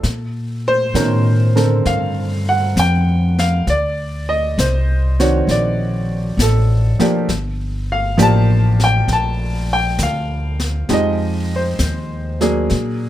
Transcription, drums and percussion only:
0.03 brush sweep soft
0.03 snare soft
0.95 snare soft
0.95 hi-hat pedal soft
1.57 snare soft
1.85 brush sweep soft
1.85 snare soft
2.77 snare soft
2.77 hi-hat pedal soft
3.39 snare soft
3.67 brush sweep soft
3.67 snare soft
4.59 snare soft
4.59 hi-hat pedal soft
5.20 snare soft
5.48 brush sweep soft
5.48 snare soft
6.39 snare soft
6.39 hi-hat pedal soft
7.00 snare soft
7.29 brush sweep soft
7.29 snare soft
8.19 snare medium
8.19 hi-hat pedal soft
8.80 snare soft
9.08 brush sweep soft
9.08 snare soft
9.99 snare soft
9.99 hi-hat pedal soft
10.60 snare soft
10.89 brush sweep soft
10.89 snare soft
11.79 snare medium
11.79 hi-hat pedal soft
12.41 snare soft
12.70 brush sweep soft
12.70 snare soft

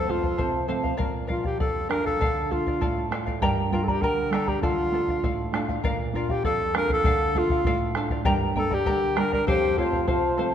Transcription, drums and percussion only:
0.09 bombo low soft
0.23 bombo low soft
0.39 bombo low medium
0.84 bombo low soft
0.99 bombo low medium
1.29 bombo low soft
1.44 bombo low medium
1.60 bombo low medium
1.91 bombo rim soft
2.07 bombo low soft
2.21 bombo low medium
2.52 bombo low soft
2.67 bombo low soft
2.82 bombo low medium
3.12 bombo rim soft
3.27 bombo low soft
3.42 bombo low medium
3.72 bombo low soft
3.88 bombo low medium
4.02 bombo low medium
4.33 bombo rim soft
4.47 bombo low soft
4.63 bombo low medium
5.08 bombo low soft
5.23 bombo low medium
5.54 bombo rim soft
5.68 bombo low soft
5.84 bombo low medium
6.14 bombo low soft
6.29 bombo low medium
6.44 bombo low medium
6.75 bombo rim medium
6.89 bombo low medium
7.04 bombo low medium
7.35 bombo low medium
7.50 bombo low medium
7.64 bombo low medium
7.95 bombo rim medium
8.10 bombo low medium
8.25 bombo low medium
8.56 bombo low soft
8.71 bombo low medium
8.86 bombo low medium
9.17 bombo rim soft
9.33 bombo low soft
9.48 bombo low medium
9.78 bombo low soft
9.93 bombo low soft
10.08 bombo low medium

